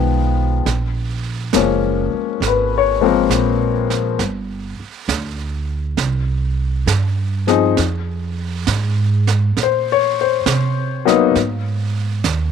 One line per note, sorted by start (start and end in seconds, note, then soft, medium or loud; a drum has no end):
0.00 0.63 B1 medium
0.00 0.68 D#3 medium
0.00 0.68 F3 medium
0.00 0.67 G#3 medium
0.00 0.67 B3 medium
0.00 0.36 F4 medium
0.66 1.51 A#1 medium
0.66 brush sweep soft
0.66 snare soft
1.53 2.08 F#1 medium
1.53 2.06 F3 medium
1.53 2.07 G#3 medium
1.53 2.07 A#3 medium
1.53 2.07 C#4 medium
1.53 snare medium
1.53 hi-hat pedal medium
2.13 muted upright bass stroke soft
2.40 3.27 G#1 medium
2.40 brush sweep soft
2.40 snare soft
2.47 2.73 B4 medium
2.78 3.03 C#5 medium
3.01 3.27 F3 medium
3.01 3.27 G#3 medium
3.01 3.28 A#3 medium
3.01 3.28 C4 medium
3.05 3.88 A#4 medium
3.29 4.16 A#1 medium
3.29 snare medium
3.29 hi-hat pedal medium
3.90 snare soft
4.19 4.75 G1 medium
4.19 brush sweep medium
4.19 snare soft
4.80 muted upright bass stroke soft
5.08 5.95 D2 medium
5.08 snare medium
5.08 hi-hat pedal soft
5.97 6.84 C2 medium
5.97 brush sweep soft
5.97 snare soft
6.86 7.74 G2 medium
6.86 snare medium
6.86 hi-hat pedal medium
7.47 7.74 F3 medium
7.47 7.75 C4 medium
7.47 7.75 D#4 medium
7.47 7.74 G#4 medium
7.47 snare soft
7.77 8.65 F2 medium
7.77 brush sweep soft
7.77 snare soft
8.67 9.54 G#2 medium
8.67 snare medium
8.67 hi-hat pedal medium
9.27 snare soft
9.57 10.43 A#2 medium
9.57 brush sweep soft
9.57 snare soft
9.63 9.89 C5 medium
9.92 10.18 C#5 medium
10.21 11.04 C5 medium
10.46 11.32 C3 medium
10.46 snare medium
10.46 hi-hat pedal soft
11.05 11.32 F#3 medium
11.05 11.32 A#3 medium
11.05 11.32 B3 medium
11.05 11.33 D#4 medium
11.05 snare soft
11.35 12.21 G#2 medium
11.35 brush sweep soft
11.35 snare soft
12.24 12.52 D#2 medium
12.24 snare medium
12.24 hi-hat pedal soft